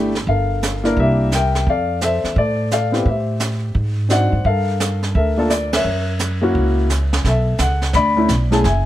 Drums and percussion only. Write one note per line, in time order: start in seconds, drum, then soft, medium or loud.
0.15 snare soft
0.27 brush sweep soft
0.27 kick soft
0.62 snare medium
0.62 hi-hat pedal medium
0.85 snare soft
0.97 brush sweep soft
0.97 kick soft
1.32 snare soft
1.32 hi-hat pedal medium
1.55 snare soft
1.67 brush sweep soft
1.67 kick soft
2.01 snare medium
2.01 hi-hat pedal soft
2.24 snare soft
2.36 brush sweep soft
2.36 kick soft
2.71 snare medium
2.71 hi-hat pedal soft
2.94 snare soft
3.06 brush sweep medium
3.06 kick soft
3.40 snare medium
3.40 hi-hat pedal medium
3.75 brush sweep soft
3.75 kick soft
4.10 snare medium
4.10 hi-hat pedal medium
4.45 brush sweep soft
4.45 kick soft
4.80 snare medium
4.80 hi-hat pedal medium
5.03 snare soft
5.15 brush sweep soft
5.15 kick soft
5.50 snare medium
5.50 hi-hat pedal medium
5.73 snare medium
5.73 ride medium
5.86 brush sweep soft
6.19 snare medium
6.19 hi-hat pedal medium
6.55 brush sweep soft
6.55 kick soft
6.90 snare medium
6.90 hi-hat pedal soft
7.13 snare medium
7.25 brush sweep soft
7.25 kick soft
7.25 snare soft
7.58 kick soft
7.58 snare medium
7.58 hi-hat pedal medium
7.82 snare soft
7.93 brush sweep soft
7.93 kick soft
7.93 snare soft
8.28 kick soft
8.28 snare medium
8.28 hi-hat pedal soft
8.52 snare soft
8.64 brush sweep soft
8.64 kick soft
8.64 snare soft